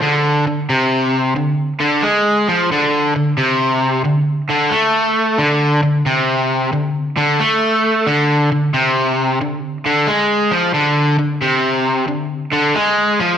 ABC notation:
X:1
M:4/4
L:1/8
Q:"Swing" 1/4=90
K:Dm
V:1 name="Overdriven electric guitar" clef=bass
D, D, C,2 D, D, ^G, F, | D, D, C,2 D, D, A,2 | D, D, C,2 D, D, A,2 | D, D, C,2 D, D, ^G, F, |
D, D, C,2 D, D, ^G, F, |]